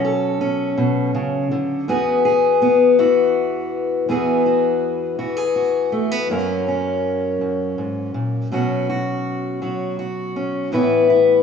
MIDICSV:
0, 0, Header, 1, 2, 480
1, 0, Start_track
1, 0, Tempo, 736196
1, 1225, Time_signature, 6, 3, 24, 8
1, 7451, End_track
2, 0, Start_track
2, 0, Title_t, "Steel-string acoustic guitar"
2, 0, Program_c, 0, 25
2, 0, Note_on_c, 0, 47, 69
2, 0, Note_on_c, 0, 54, 64
2, 0, Note_on_c, 0, 61, 63
2, 30, Note_on_c, 0, 69, 63
2, 259, Note_off_c, 0, 61, 0
2, 266, Note_on_c, 0, 61, 55
2, 498, Note_off_c, 0, 47, 0
2, 505, Note_on_c, 0, 47, 65
2, 744, Note_off_c, 0, 47, 0
2, 747, Note_on_c, 0, 49, 66
2, 985, Note_off_c, 0, 49, 0
2, 987, Note_on_c, 0, 50, 60
2, 1196, Note_off_c, 0, 61, 0
2, 1197, Note_off_c, 0, 69, 0
2, 1226, Note_off_c, 0, 50, 0
2, 1226, Note_on_c, 0, 40, 74
2, 1232, Note_on_c, 0, 59, 63
2, 1235, Note_on_c, 0, 66, 59
2, 1239, Note_on_c, 0, 68, 66
2, 1246, Note_off_c, 0, 54, 0
2, 1460, Note_off_c, 0, 68, 0
2, 1468, Note_on_c, 0, 68, 61
2, 1700, Note_off_c, 0, 59, 0
2, 1707, Note_on_c, 0, 59, 56
2, 1942, Note_off_c, 0, 66, 0
2, 1945, Note_off_c, 0, 68, 0
2, 1947, Note_on_c, 0, 52, 63
2, 1950, Note_on_c, 0, 66, 59
2, 2636, Note_off_c, 0, 59, 0
2, 2657, Note_off_c, 0, 40, 0
2, 2658, Note_off_c, 0, 52, 0
2, 2664, Note_on_c, 0, 40, 51
2, 2668, Note_off_c, 0, 66, 0
2, 2668, Note_on_c, 0, 52, 45
2, 2669, Note_on_c, 0, 59, 46
2, 2676, Note_on_c, 0, 66, 48
2, 2679, Note_on_c, 0, 68, 51
2, 2906, Note_off_c, 0, 66, 0
2, 2909, Note_on_c, 0, 66, 48
2, 3374, Note_off_c, 0, 52, 0
2, 3380, Note_off_c, 0, 68, 0
2, 3382, Note_off_c, 0, 66, 0
2, 3382, Note_on_c, 0, 52, 48
2, 3382, Note_on_c, 0, 66, 44
2, 3499, Note_off_c, 0, 66, 0
2, 3499, Note_on_c, 0, 68, 37
2, 3624, Note_on_c, 0, 66, 46
2, 3859, Note_off_c, 0, 59, 0
2, 3861, Note_on_c, 0, 57, 43
2, 3987, Note_off_c, 0, 57, 0
2, 3987, Note_on_c, 0, 59, 38
2, 4102, Note_off_c, 0, 68, 0
2, 4103, Note_off_c, 0, 52, 0
2, 4104, Note_off_c, 0, 40, 0
2, 4105, Note_off_c, 0, 59, 0
2, 4107, Note_on_c, 0, 42, 56
2, 4111, Note_on_c, 0, 54, 46
2, 4114, Note_on_c, 0, 58, 45
2, 4115, Note_off_c, 0, 66, 0
2, 4118, Note_on_c, 0, 61, 47
2, 4124, Note_on_c, 0, 70, 51
2, 4354, Note_off_c, 0, 61, 0
2, 4357, Note_on_c, 0, 61, 47
2, 4824, Note_off_c, 0, 42, 0
2, 4832, Note_on_c, 0, 42, 49
2, 5069, Note_off_c, 0, 42, 0
2, 5073, Note_on_c, 0, 44, 52
2, 5306, Note_off_c, 0, 44, 0
2, 5309, Note_on_c, 0, 46, 48
2, 5521, Note_off_c, 0, 54, 0
2, 5522, Note_off_c, 0, 58, 0
2, 5527, Note_off_c, 0, 70, 0
2, 5547, Note_off_c, 0, 46, 0
2, 5552, Note_on_c, 0, 47, 54
2, 5557, Note_off_c, 0, 61, 0
2, 5557, Note_on_c, 0, 54, 51
2, 5565, Note_on_c, 0, 61, 48
2, 5568, Note_on_c, 0, 66, 53
2, 5792, Note_off_c, 0, 66, 0
2, 5800, Note_on_c, 0, 66, 56
2, 6264, Note_off_c, 0, 54, 0
2, 6266, Note_off_c, 0, 66, 0
2, 6270, Note_on_c, 0, 54, 52
2, 6275, Note_on_c, 0, 66, 47
2, 6505, Note_off_c, 0, 66, 0
2, 6513, Note_on_c, 0, 66, 51
2, 6748, Note_off_c, 0, 61, 0
2, 6756, Note_on_c, 0, 61, 45
2, 6961, Note_off_c, 0, 54, 0
2, 6963, Note_off_c, 0, 61, 0
2, 6988, Note_on_c, 0, 45, 58
2, 6991, Note_off_c, 0, 47, 0
2, 6991, Note_off_c, 0, 66, 0
2, 6993, Note_on_c, 0, 52, 47
2, 6997, Note_on_c, 0, 59, 48
2, 7001, Note_on_c, 0, 64, 48
2, 7006, Note_on_c, 0, 71, 52
2, 7234, Note_off_c, 0, 64, 0
2, 7237, Note_on_c, 0, 64, 50
2, 7451, Note_off_c, 0, 45, 0
2, 7451, Note_off_c, 0, 52, 0
2, 7451, Note_off_c, 0, 59, 0
2, 7451, Note_off_c, 0, 64, 0
2, 7451, Note_off_c, 0, 71, 0
2, 7451, End_track
0, 0, End_of_file